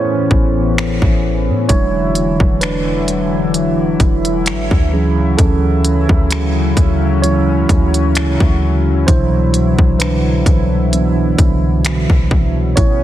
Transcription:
Already playing: analog synth pad A2 E3 B3 C#4, tine electric piano B3 C#4 E4 C5 C#5
0.31 808-style bass A1, kick
0.78 finger snap
1.02 808-style bass A1, kick
1.48 808-style bass A2
1.69 808-style bass E1, analog synth pad D3 F#3 E4, tine electric piano F#3 G#3 D4 E4 C#5, kick, closed hi-hat
2.15 closed hi-hat
2.40 808-style bass E1, kick
2.61 tine electric piano D4 B4, finger snap, closed hi-hat
3.08 closed hi-hat
3.54 closed hi-hat
4.00 808-style bass E1, kick, closed hi-hat
4.25 closed hi-hat
4.46 808-style bass G#1, finger snap, closed hi-hat
4.71 808-style bass D2, kick
4.92 analog synth pad C#3, tine electric piano E3 F#3 C#4 G#4
5.37 808-style bass D2, tine electric piano C#4 A4, kick, closed hi-hat
5.85 closed hi-hat
6.09 808-style bass D2, kick
6.31 finger snap, closed hi-hat
6.77 808-style bass D2, analog synth pad C#4, kick, closed hi-hat
7.22 tine electric piano E3 F#3 G#3 C#4 E4 C#5, closed hi-hat
7.69 808-style bass D2, kick, closed hi-hat
7.94 closed hi-hat
8.15 finger snap, closed hi-hat
8.40 808-style bass D2, kick
9.07 808-style bass C2, analog synth pad B2 D3 E4, tine electric piano B2 E3 F#3 D4 E4 C5, kick, closed hi-hat
9.54 closed hi-hat
9.79 808-style bass C2, kick
9.99 tine electric piano D4 B4, finger snap, closed hi-hat
10.46 808-style bass C2, kick, closed hi-hat
10.92 tine electric piano E3 F#3 B3 D4, closed hi-hat
11.38 808-style bass C2, kick, closed hi-hat
11.85 finger snap, closed hi-hat
12.10 808-style bass C2, kick
12.31 kick
12.76 808-style bass A1, analog synth pad A2 B3 C#4, tine electric piano E4 C#5, kick, closed hi-hat

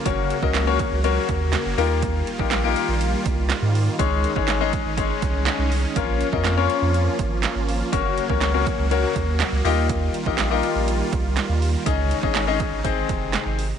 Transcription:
Already playing: supersaw synth C#3 A#3
0.05 analog synth bass F#1, supersaw synth F#3 F#4, grand piano A#3 C#4 F#4 A#4 C#5, kick, closed hi-hat
0.30 closed hi-hat
0.43 analog synth bass C#2, grand piano A#3 C#4 F#4 A#4 D#5, kick
0.54 snare, clap, closed hi-hat
0.67 grand piano A#3 C#4 F#4 A#4 C#5
0.79 kick, closed hi-hat
0.92 analog synth bass C#2
1.04 grand piano A#3 C#4 F#4 A#4 C#5, closed hi-hat
1.29 analog synth bass D#2, kick, closed hi-hat
1.53 snare, clap, closed hi-hat
1.66 analog synth bass F#1
1.78 analog synth bass D#2, supersaw synth D#3 G3 F4, grand piano A#3 D#4 F4 G4 A#4, open hi-hat
2.02 kick, closed hi-hat
2.27 closed hi-hat
2.39 analog synth bass A#1, grand piano A#3 D#4 F4 G4 A#4, kick
2.51 snare, clap, closed hi-hat
2.64 grand piano A#3 D#4 F4 G4 A#4
2.76 closed hi-hat
2.89 analog synth bass A#1
3.01 closed hi-hat
3.26 analog synth bass C2, kick, closed hi-hat
3.49 snare, clap, closed hi-hat
3.62 analog synth bass G#2
3.75 open hi-hat
3.99 analog synth bass C#2, grand piano G#3 C#4 D#4 G#4 C#5, supersaw synth G#3 C#4 D#4, kick, closed hi-hat
4.24 closed hi-hat
4.36 analog synth bass G#1, grand piano G#3 C#4 D#4 G#4 C#5, kick
4.48 snare, clap, closed hi-hat
4.60 grand piano G#3 C#4 D#4 G#4 D#5
4.73 kick, closed hi-hat
4.85 analog synth bass G#1
4.97 grand piano G#3 C#4 D#4 G#4 C#5, kick, closed hi-hat
5.22 analog synth bass C2, kick, closed hi-hat
5.46 snare, clap, closed hi-hat
5.59 analog synth bass C2
5.72 open hi-hat
5.96 analog synth bass A#1, supersaw synth F3 A#3 F4, grand piano A#3 C#4 F4 A#4 C#5, kick, closed hi-hat
6.21 closed hi-hat
6.33 analog synth bass F2, grand piano A#3 C#4 F4 A#4 D#5, kick
6.44 snare, clap, closed hi-hat
6.57 grand piano A#3 C#4 F4 A#4 C#5
6.70 closed hi-hat
6.82 analog synth bass F2
6.94 closed hi-hat
7.19 analog synth bass G#1, kick, closed hi-hat
7.43 snare, clap, closed hi-hat
7.56 analog synth bass G#1
7.69 open hi-hat
7.92 analog synth bass F#1, supersaw synth C#3 F#3 F#4, grand piano A#3 C#4 F#4 A#4 C#5, kick, closed hi-hat
8.18 closed hi-hat
8.29 analog synth bass C#2, grand piano A#3 C#4 F#4 A#4 C#5, kick
8.41 snare, clap, closed hi-hat
8.54 grand piano A#3 C#4 F#4 A#4 C#5
8.67 kick, closed hi-hat
8.79 analog synth bass C#2
8.91 grand piano A#3 C#4 F#4 A#4 C#5, closed hi-hat
9.16 analog synth bass D#2, kick, closed hi-hat
9.40 snare, clap, closed hi-hat
9.53 analog synth bass C#2
9.65 analog synth bass D#2, supersaw synth D#3 G3 F4, grand piano D#4 F4 G4 A#4 D#5, open hi-hat
9.89 kick, closed hi-hat
10.14 closed hi-hat
10.26 analog synth bass A#1, grand piano D#4 F4 G4 A#4 D#5, kick
10.38 snare, clap, closed hi-hat
10.51 grand piano D#4 F4 G4 A#4 D#5
10.63 closed hi-hat
10.76 analog synth bass A#1
10.88 closed hi-hat
11.13 analog synth bass C2, kick, closed hi-hat
11.37 snare, clap, closed hi-hat
11.49 analog synth bass D#2
11.62 open hi-hat
11.86 analog synth bass C#2, supersaw synth C#3 D#3 G#3 D#4, grand piano C#4 D#4 G#4 C#5 D#5, kick, closed hi-hat
12.11 closed hi-hat
12.23 analog synth bass G#1, grand piano C#4 D#4 G#4 C#5 D#5, kick
12.35 snare, clap, closed hi-hat
12.47 grand piano C#4 D#4 G#4 C#5 D#5
12.60 kick, closed hi-hat
12.72 analog synth bass G#1
12.84 analog synth bass G#1, supersaw synth C3, grand piano C4 D#4 G#4 C5 D#5, kick, closed hi-hat
13.09 analog synth bass F1, kick, closed hi-hat
13.33 snare, clap, closed hi-hat
13.46 analog synth bass G#1
13.59 open hi-hat

